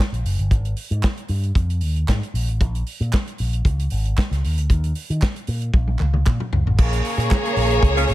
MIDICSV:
0, 0, Header, 1, 6, 480
1, 0, Start_track
1, 0, Tempo, 522648
1, 474, Time_signature, 4, 2, 24, 8
1, 7478, End_track
2, 0, Start_track
2, 0, Title_t, "Violin section"
2, 0, Program_c, 0, 48
2, 6235, Note_on_c, 0, 68, 96
2, 6236, Note_on_c, 0, 73, 107
2, 6238, Note_on_c, 0, 58, 102
2, 7478, Note_off_c, 0, 58, 0
2, 7478, Note_off_c, 0, 68, 0
2, 7478, Note_off_c, 0, 73, 0
2, 7478, End_track
3, 0, Start_track
3, 0, Title_t, "Horn section"
3, 0, Program_c, 1, 61
3, 7314, Note_on_c, 1, 61, 97
3, 7315, Note_on_c, 1, 68, 98
3, 7316, Note_on_c, 1, 65, 93
3, 7388, Note_off_c, 1, 61, 0
3, 7388, Note_off_c, 1, 68, 0
3, 7389, Note_off_c, 1, 65, 0
3, 7478, End_track
4, 0, Start_track
4, 0, Title_t, "French horn section"
4, 0, Program_c, 2, 60
4, 6225, Note_on_c, 2, 49, 78
4, 6226, Note_on_c, 2, 68, 90
4, 6228, Note_on_c, 2, 58, 75
4, 7478, Note_off_c, 2, 49, 0
4, 7478, Note_off_c, 2, 58, 0
4, 7478, Note_off_c, 2, 68, 0
4, 7478, End_track
5, 0, Start_track
5, 0, Title_t, "Picked electric bass"
5, 0, Program_c, 3, 34
5, 112, Note_on_c, 3, 34, 73
5, 207, Note_off_c, 3, 34, 0
5, 226, Note_on_c, 3, 30, 70
5, 332, Note_off_c, 3, 30, 0
5, 357, Note_on_c, 3, 31, 86
5, 471, Note_off_c, 3, 31, 0
5, 471, Note_on_c, 3, 32, 86
5, 666, Note_off_c, 3, 32, 0
5, 835, Note_on_c, 3, 44, 93
5, 929, Note_off_c, 3, 44, 0
5, 1186, Note_on_c, 3, 43, 80
5, 1384, Note_off_c, 3, 43, 0
5, 1428, Note_on_c, 3, 41, 82
5, 1671, Note_off_c, 3, 41, 0
5, 1671, Note_on_c, 3, 39, 90
5, 1867, Note_off_c, 3, 39, 0
5, 1913, Note_on_c, 3, 44, 109
5, 2017, Note_off_c, 3, 44, 0
5, 2147, Note_on_c, 3, 34, 84
5, 2279, Note_off_c, 3, 34, 0
5, 2279, Note_on_c, 3, 33, 84
5, 2392, Note_off_c, 3, 33, 0
5, 2392, Note_on_c, 3, 34, 97
5, 2588, Note_off_c, 3, 34, 0
5, 2760, Note_on_c, 3, 46, 95
5, 2852, Note_off_c, 3, 46, 0
5, 3120, Note_on_c, 3, 34, 76
5, 3313, Note_off_c, 3, 34, 0
5, 3351, Note_on_c, 3, 37, 93
5, 3547, Note_off_c, 3, 37, 0
5, 3598, Note_on_c, 3, 32, 100
5, 3791, Note_off_c, 3, 32, 0
5, 3959, Note_on_c, 3, 37, 84
5, 4052, Note_off_c, 3, 37, 0
5, 4082, Note_on_c, 3, 39, 83
5, 4205, Note_off_c, 3, 39, 0
5, 4205, Note_on_c, 3, 38, 73
5, 4296, Note_off_c, 3, 38, 0
5, 4317, Note_on_c, 3, 39, 95
5, 4511, Note_off_c, 3, 39, 0
5, 4683, Note_on_c, 3, 51, 89
5, 4775, Note_off_c, 3, 51, 0
5, 5035, Note_on_c, 3, 46, 81
5, 5230, Note_off_c, 3, 46, 0
5, 5266, Note_on_c, 3, 34, 101
5, 5465, Note_off_c, 3, 34, 0
5, 5518, Note_on_c, 3, 37, 92
5, 5711, Note_off_c, 3, 37, 0
5, 5756, Note_on_c, 3, 46, 112
5, 5859, Note_off_c, 3, 46, 0
5, 5991, Note_on_c, 3, 37, 72
5, 6096, Note_off_c, 3, 37, 0
5, 6113, Note_on_c, 3, 33, 92
5, 6208, Note_off_c, 3, 33, 0
5, 6231, Note_on_c, 3, 34, 115
5, 6427, Note_off_c, 3, 34, 0
5, 6593, Note_on_c, 3, 46, 99
5, 6688, Note_off_c, 3, 46, 0
5, 6948, Note_on_c, 3, 34, 90
5, 7144, Note_off_c, 3, 34, 0
5, 7190, Note_on_c, 3, 37, 97
5, 7385, Note_off_c, 3, 37, 0
5, 7426, Note_on_c, 3, 32, 96
5, 7478, Note_off_c, 3, 32, 0
5, 7478, End_track
6, 0, Start_track
6, 0, Title_t, "Drums"
6, 3, Note_on_c, 9, 38, 100
6, 95, Note_off_c, 9, 38, 0
6, 125, Note_on_c, 9, 42, 41
6, 217, Note_off_c, 9, 42, 0
6, 234, Note_on_c, 9, 46, 66
6, 326, Note_off_c, 9, 46, 0
6, 356, Note_on_c, 9, 42, 43
6, 448, Note_off_c, 9, 42, 0
6, 468, Note_on_c, 9, 42, 64
6, 469, Note_on_c, 9, 36, 90
6, 560, Note_off_c, 9, 42, 0
6, 561, Note_off_c, 9, 36, 0
6, 595, Note_on_c, 9, 42, 42
6, 687, Note_off_c, 9, 42, 0
6, 703, Note_on_c, 9, 46, 58
6, 795, Note_off_c, 9, 46, 0
6, 841, Note_on_c, 9, 42, 40
6, 933, Note_off_c, 9, 42, 0
6, 947, Note_on_c, 9, 39, 101
6, 953, Note_on_c, 9, 36, 108
6, 956, Note_on_c, 9, 38, 114
6, 1039, Note_off_c, 9, 39, 0
6, 1045, Note_off_c, 9, 36, 0
6, 1048, Note_off_c, 9, 38, 0
6, 1077, Note_on_c, 9, 42, 45
6, 1169, Note_off_c, 9, 42, 0
6, 1178, Note_on_c, 9, 46, 58
6, 1270, Note_off_c, 9, 46, 0
6, 1317, Note_on_c, 9, 42, 38
6, 1408, Note_off_c, 9, 42, 0
6, 1426, Note_on_c, 9, 36, 108
6, 1434, Note_on_c, 9, 42, 61
6, 1518, Note_off_c, 9, 36, 0
6, 1526, Note_off_c, 9, 42, 0
6, 1560, Note_on_c, 9, 42, 49
6, 1651, Note_off_c, 9, 42, 0
6, 1659, Note_on_c, 9, 46, 56
6, 1751, Note_off_c, 9, 46, 0
6, 1801, Note_on_c, 9, 42, 37
6, 1893, Note_off_c, 9, 42, 0
6, 1912, Note_on_c, 9, 39, 95
6, 1915, Note_on_c, 9, 36, 101
6, 1922, Note_on_c, 9, 38, 103
6, 2004, Note_off_c, 9, 39, 0
6, 2007, Note_off_c, 9, 36, 0
6, 2014, Note_off_c, 9, 38, 0
6, 2049, Note_on_c, 9, 42, 42
6, 2140, Note_off_c, 9, 42, 0
6, 2157, Note_on_c, 9, 46, 69
6, 2249, Note_off_c, 9, 46, 0
6, 2278, Note_on_c, 9, 42, 44
6, 2370, Note_off_c, 9, 42, 0
6, 2393, Note_on_c, 9, 42, 61
6, 2394, Note_on_c, 9, 36, 104
6, 2485, Note_off_c, 9, 42, 0
6, 2486, Note_off_c, 9, 36, 0
6, 2524, Note_on_c, 9, 42, 49
6, 2616, Note_off_c, 9, 42, 0
6, 2631, Note_on_c, 9, 46, 55
6, 2723, Note_off_c, 9, 46, 0
6, 2773, Note_on_c, 9, 42, 38
6, 2865, Note_off_c, 9, 42, 0
6, 2872, Note_on_c, 9, 39, 101
6, 2879, Note_on_c, 9, 36, 102
6, 2886, Note_on_c, 9, 38, 104
6, 2964, Note_off_c, 9, 39, 0
6, 2971, Note_off_c, 9, 36, 0
6, 2978, Note_off_c, 9, 38, 0
6, 3006, Note_on_c, 9, 42, 44
6, 3098, Note_off_c, 9, 42, 0
6, 3105, Note_on_c, 9, 46, 62
6, 3197, Note_off_c, 9, 46, 0
6, 3242, Note_on_c, 9, 42, 40
6, 3333, Note_off_c, 9, 42, 0
6, 3352, Note_on_c, 9, 36, 100
6, 3362, Note_on_c, 9, 42, 61
6, 3443, Note_off_c, 9, 36, 0
6, 3454, Note_off_c, 9, 42, 0
6, 3485, Note_on_c, 9, 42, 52
6, 3577, Note_off_c, 9, 42, 0
6, 3582, Note_on_c, 9, 46, 62
6, 3674, Note_off_c, 9, 46, 0
6, 3722, Note_on_c, 9, 42, 37
6, 3814, Note_off_c, 9, 42, 0
6, 3835, Note_on_c, 9, 39, 96
6, 3838, Note_on_c, 9, 36, 96
6, 3847, Note_on_c, 9, 38, 99
6, 3926, Note_off_c, 9, 39, 0
6, 3929, Note_off_c, 9, 36, 0
6, 3938, Note_off_c, 9, 38, 0
6, 3970, Note_on_c, 9, 38, 28
6, 3971, Note_on_c, 9, 42, 41
6, 4062, Note_off_c, 9, 38, 0
6, 4063, Note_off_c, 9, 42, 0
6, 4080, Note_on_c, 9, 46, 71
6, 4172, Note_off_c, 9, 46, 0
6, 4203, Note_on_c, 9, 42, 45
6, 4294, Note_off_c, 9, 42, 0
6, 4314, Note_on_c, 9, 36, 100
6, 4315, Note_on_c, 9, 42, 60
6, 4406, Note_off_c, 9, 36, 0
6, 4407, Note_off_c, 9, 42, 0
6, 4442, Note_on_c, 9, 42, 49
6, 4534, Note_off_c, 9, 42, 0
6, 4547, Note_on_c, 9, 46, 60
6, 4639, Note_off_c, 9, 46, 0
6, 4687, Note_on_c, 9, 42, 41
6, 4779, Note_off_c, 9, 42, 0
6, 4792, Note_on_c, 9, 39, 99
6, 4797, Note_on_c, 9, 36, 110
6, 4805, Note_on_c, 9, 38, 106
6, 4884, Note_off_c, 9, 39, 0
6, 4889, Note_off_c, 9, 36, 0
6, 4897, Note_off_c, 9, 38, 0
6, 4922, Note_on_c, 9, 42, 45
6, 5014, Note_off_c, 9, 42, 0
6, 5024, Note_on_c, 9, 46, 56
6, 5116, Note_off_c, 9, 46, 0
6, 5158, Note_on_c, 9, 42, 41
6, 5250, Note_off_c, 9, 42, 0
6, 5268, Note_on_c, 9, 36, 109
6, 5271, Note_on_c, 9, 48, 47
6, 5359, Note_off_c, 9, 36, 0
6, 5363, Note_off_c, 9, 48, 0
6, 5396, Note_on_c, 9, 48, 45
6, 5488, Note_off_c, 9, 48, 0
6, 5500, Note_on_c, 9, 39, 66
6, 5508, Note_on_c, 9, 47, 66
6, 5592, Note_off_c, 9, 39, 0
6, 5600, Note_off_c, 9, 47, 0
6, 5635, Note_on_c, 9, 47, 60
6, 5727, Note_off_c, 9, 47, 0
6, 5750, Note_on_c, 9, 45, 88
6, 5753, Note_on_c, 9, 39, 95
6, 5755, Note_on_c, 9, 36, 98
6, 5842, Note_off_c, 9, 45, 0
6, 5845, Note_off_c, 9, 39, 0
6, 5847, Note_off_c, 9, 36, 0
6, 5880, Note_on_c, 9, 45, 72
6, 5972, Note_off_c, 9, 45, 0
6, 5994, Note_on_c, 9, 43, 103
6, 6086, Note_off_c, 9, 43, 0
6, 6125, Note_on_c, 9, 43, 73
6, 6217, Note_off_c, 9, 43, 0
6, 6232, Note_on_c, 9, 36, 117
6, 6233, Note_on_c, 9, 49, 107
6, 6324, Note_off_c, 9, 36, 0
6, 6324, Note_off_c, 9, 49, 0
6, 6360, Note_on_c, 9, 42, 57
6, 6452, Note_off_c, 9, 42, 0
6, 6471, Note_on_c, 9, 46, 69
6, 6563, Note_off_c, 9, 46, 0
6, 6609, Note_on_c, 9, 42, 51
6, 6701, Note_off_c, 9, 42, 0
6, 6712, Note_on_c, 9, 39, 106
6, 6715, Note_on_c, 9, 36, 119
6, 6723, Note_on_c, 9, 38, 122
6, 6804, Note_off_c, 9, 39, 0
6, 6807, Note_off_c, 9, 36, 0
6, 6815, Note_off_c, 9, 38, 0
6, 6845, Note_on_c, 9, 42, 54
6, 6936, Note_off_c, 9, 42, 0
6, 6946, Note_on_c, 9, 46, 76
6, 7037, Note_off_c, 9, 46, 0
6, 7080, Note_on_c, 9, 42, 50
6, 7172, Note_off_c, 9, 42, 0
6, 7187, Note_on_c, 9, 36, 121
6, 7201, Note_on_c, 9, 42, 70
6, 7279, Note_off_c, 9, 36, 0
6, 7293, Note_off_c, 9, 42, 0
6, 7322, Note_on_c, 9, 42, 57
6, 7414, Note_off_c, 9, 42, 0
6, 7422, Note_on_c, 9, 46, 67
6, 7423, Note_on_c, 9, 39, 65
6, 7478, Note_off_c, 9, 39, 0
6, 7478, Note_off_c, 9, 46, 0
6, 7478, End_track
0, 0, End_of_file